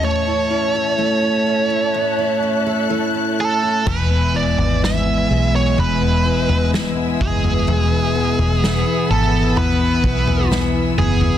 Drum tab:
CC |----------------|x---------------|----------------|
SD |----------------|----o-------o---|----o-------o---|
FT |----------------|o--o----o--o--oo|o--o----o--o--oo|
BD |----------------|o-------------o-|----------o-----|